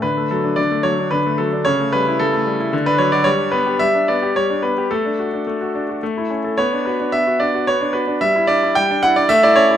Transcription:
\new Staff \with { instrumentName = "Grand piano" } { \time 3/4 \key d \major \tempo 4 = 110 << { b'8 a'8 d''8 cis''8 b'8 a'8 | cis''8 b'8 a'4~ a'16 b'16 cis''16 d''16 | cis''8 b'8 e''8 d''8 cis''8 b'8 | a'2~ a'8 r8 |
cis''8 b'8 e''8 d''8 cis''8 b'8 | e''8 d''8 g''8 fis''16 d''16 e''16 d''16 cis''8 | } \\ { d16 a16 fis16 d'16 d16 a16 fis16 d'16 d16 a16 fis16 d'16 | cis16 a16 g16 e'16 cis16 a16 g16 e'16 d16 d'16 fis16 fis'16 | g16 d'16 b16 g'16 g16 d'16 b16 g'16 g16 d'16 b16 g'16 | a16 d'16 fis'16 d'16 a16 fis'16 d'16 fis'16 a16 e'16 cis'16 a'16 |
b16 d'16 fis'16 d'16 b16 fis'16 d'16 fis'16 b16 d'16 fis'16 d'16 | g16 e'16 d'16 e'16 g16 d'16 e'16 d'16 a16 e'16 cis'16 e'16 | } >> }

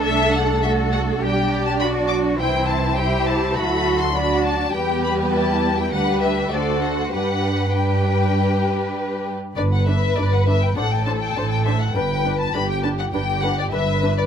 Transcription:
<<
  \new Staff \with { instrumentName = "Violin section" } { \time 4/4 \key g \major \tempo 4 = 101 e''8 fis''8 e''8 fis''8 g''8. a''16 b''8 d'''8 | g''8 a''8 g''8 a''8 b''8. c'''16 b''8 a''8 | g''8 b''8 a''8. g''16 fis''8 e''8 d''8 fis''8 | fis''4 g''2~ g''8 r8 |
d''16 fis''16 e''8 d''16 fis''16 e''16 g''16 fis''16 g''16 a''16 g''16 a''16 g''16 e''16 fis''16 | g''8. a''16 b''16 g''16 a''16 fis''16 g''8 fis''16 d''16 e''8. d''16 | }
  \new Staff \with { instrumentName = "Violin section" } { \time 4/4 \key g \major << { r2 d''2 | c''2 a'4 d''4 | b'2 b'4 c''4 | b'4 b'2~ b'8 r8 |
b'2 a'2 | b'4 g'4 g'4 b'4 | } \\ { a'4 fis'4 g'4 d'4 | c'4 e'4 fis'4 fis'4 | g'2 g'4 fis'4 | g'4 g'2~ g'8 r8 |
r1 | r1 | } >> }
  \new Staff \with { instrumentName = "Cello section" } { \time 4/4 \key g \major a'4 a'4 g'4 fis'4 | e'4 g'4 fis'4 d'4 | g'4 e'4 b'4 a'4 | b'2.~ b'8 r8 |
g,4 g,4 a,4 a,4 | g,4 g,4 g,4 g,4 | }
  \new Staff \with { instrumentName = "Viola section" } { \time 4/4 \key g \major << { d'2 d'2 | e'4 e'2 d'4 | b2 d'4 d'4 | d'4 d'2~ d'8 r8 |
b'8 b'8 b'8 b'8 c''8 c''8 c''8 c''8 | b'8 b'8 b'8 b'8 b'8 b'8 b'8 b'8 | } \\ { a4 a4 g4 fis4 | e4 g4 fis4 fis4 | g2 g4 a4 | g4 g2~ g8 r8 |
d'8 d'8 d'8 d'8 d'8 d'8 d'8 d'8 | d'8 d'8 d'8 d'8 d'8 d'8 d'8 d'8 | } >> }
  \new Staff \with { instrumentName = "Double bass section" } { \clef bass \time 4/4 \key g \major c,2 b,,2 | c,2 d,2 | e,2 d,4 d,4 | g,2.~ g,8 r8 |
g,,4 g,,4 a,,4 a,,4 | g,,4 g,,4 g,,4 g,,4 | }
>>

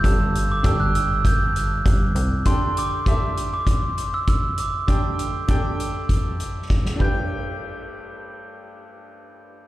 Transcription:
<<
  \new Staff \with { instrumentName = "Glockenspiel" } { \time 4/4 \key g \major \tempo 4 = 99 e'''8. d'''16 e'''16 fis'''16 e'''8 g'''4. r8 | c'''8 d'''8 d'''8. d'''4 e'''16 e'''8 d'''8~ | d'''2. r8 g'''8~ | g'''1 | }
  \new Staff \with { instrumentName = "Upright piano" } { \time 4/4 \key g \major <d' g' a' a''>4 <d' g' a' g''>4. r4. | <d' g' a' g''>4 <d' g' a' e''>4. r4. | <d' g' a' g''>4 <d' g' a' g''>4. r4 <d' g' b' g''>8~ | <d' g' b' g''>1 | }
  \new Staff \with { instrumentName = "Upright piano" } { \clef bass \time 4/4 \key g \major g,4. r2 r8 | d4. r2 r8 | d4. r2 g,8~ | g,1 | }
  \new Staff \with { instrumentName = "Analog synth bass" } { \clef bass \time 4/4 \key g \major g,,4 g,,2 g,,8 c,8 | r1 | r1 | r1 | }
  \new DrumStaff \with { instrumentName = "Drums" } \drummode { \time 4/4 <hh bd>8 hh8 <hh bd>8 hh8 <hh bd>8 hh8 <hh bd>8 hh8 | <hh bd>8 hh8 <hh bd>8 hh8 <hh bd>8 hh8 <hh bd>8 hh8 | <hh bd>8 hh8 <hh bd>8 hh8 <hh bd>8 hh8 <bd sn>16 sn16 <bd cymr>8 | r4 r4 r4 r4 | }
>>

